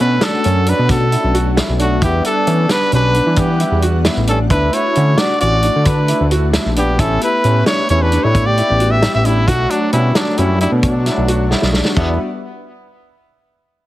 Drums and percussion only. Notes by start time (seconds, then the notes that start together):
0.21 snare, closed hi-hat
0.44 closed hi-hat
0.66 closed hi-hat
0.89 kick, snare, closed hi-hat
1.12 closed hi-hat
1.35 closed hi-hat
1.57 snare, closed hi-hat
1.79 closed hi-hat
2.02 kick, closed hi-hat
2.24 closed hi-hat
2.47 closed hi-hat
2.69 snare, closed hi-hat
2.92 closed hi-hat
3.14 closed hi-hat
3.36 kick, closed hi-hat
3.60 closed hi-hat
3.82 closed hi-hat
4.05 snare, closed hi-hat
4.27 closed hi-hat
4.50 kick, closed hi-hat
4.73 closed hi-hat
4.95 closed hi-hat
5.18 snare, closed hi-hat
5.40 closed hi-hat
5.63 closed hi-hat
5.85 kick, closed hi-hat
6.08 closed hi-hat
6.31 closed hi-hat
6.53 snare, closed hi-hat
6.76 closed hi-hat
6.99 kick, closed hi-hat
7.21 closed hi-hat
7.44 closed hi-hat
7.66 snare, closed hi-hat
7.89 closed hi-hat
8.12 closed hi-hat
8.35 kick, closed hi-hat
8.57 closed hi-hat
8.80 closed hi-hat
9.02 snare, closed hi-hat
9.25 closed hi-hat
9.48 kick, closed hi-hat
9.70 closed hi-hat
9.93 closed hi-hat
10.15 snare, closed hi-hat
10.38 closed hi-hat
10.61 closed hi-hat
10.83 kick, closed hi-hat
11.06 snare, closed hi-hat
11.28 closed hi-hat
11.51 snare
11.62 snare
11.73 snare
11.85 snare
11.97 kick, crash